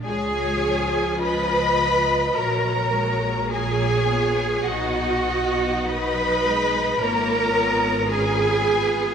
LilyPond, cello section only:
\new Staff \with { instrumentName = "Cello section" } { \time 4/4 \key ces \lydian \tempo 4 = 52 aes'4 ces''4 bes'4 aes'4 | fis'4 b'4 bes'4 aes'4 | }